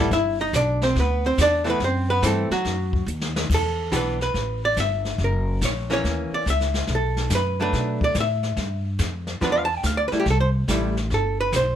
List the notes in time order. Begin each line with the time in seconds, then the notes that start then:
0.00 E4 A4
0.11 G1 E4 E5, brush sweep, kick, snare
0.41 D#4 D#5
0.53 B1 D4 D5, kick, snare, hi-hat pedal
0.82 C4 C5, snare
0.95 D2 B3, brush sweep, kick, snare
1.00 B4
1.26 C4 C5
1.38 E2 D5, kick, snare, hi-hat pedal
1.42 D4
1.64 E3 A3 C4, snare
1.69 B3 B4
1.80 F#2, brush sweep, kick, snare
1.84 C4 C5
2.10 B3 B4
2.22 G2 E3 A3 C4, kick, snare, hi-hat pedal
2.26 A4
2.50 F#3 F#4, muted upright bass stroke, snare
2.65 F#2, brush sweep, kick, snare
2.93 kick
3.06 D#2, hi-hat pedal
3.21 snare
3.36 snare
3.50 E2, brush sweep, kick, snare, crash
3.54 A4
3.92 B1 E3 B3 D4 G4, kick, snare, hi-hat pedal
3.96 B4
4.21 B4, snare
4.34 A1, brush sweep, kick, snare
4.65 D5
4.77 G1 E5, kick, snare, hi-hat pedal
5.05 snare
5.18 F#1, brush sweep, kick, snare
5.24 A#4
5.61 A#1 C#5, kick, snare, hi-hat pedal
5.90 E3 A#3 C#4 C#5, snare
6.04 D#2, brush sweep, kick, snare
6.31 D5, muted upright bass stroke
6.46 C#2, kick, snare, hi-hat pedal
6.50 E5
6.60 snare
6.74 snare
6.87 B1, brush sweep, kick, snare
6.95 A4
7.17 snare
7.30 F#2, kick, snare, hi-hat pedal
7.35 B4
7.60 F#3 A3 D4 B4
7.73 B2, brush sweep, kick, snare
8.01 D5, kick
8.14 A2, kick, snare, hi-hat pedal
8.20 E5
8.43 snare
8.57 G2, brush sweep, kick, snare
8.99 F2, kick, snare, hi-hat pedal
9.27 snare
9.41 E2 F3 B3 D4 B4, brush sweep, kick, snare
9.52 D5
9.59 F5
9.65 A5
9.77 G5
9.83 D2 F5, kick, snare, hi-hat pedal
9.97 D5
10.08 G3 B4, muted upright bass stroke, snare
10.12 A3 E4
10.20 G4
10.26 C2, brush sweep, kick, snare
10.30 A4
10.40 C5
10.68 A1 G3 A3 E4, kick, snare, hi-hat pedal
10.97 snare
11.10 G1 A4, brush sweep, kick, snare
11.41 B4
11.52 B1 C5, kick, snare, hi-hat pedal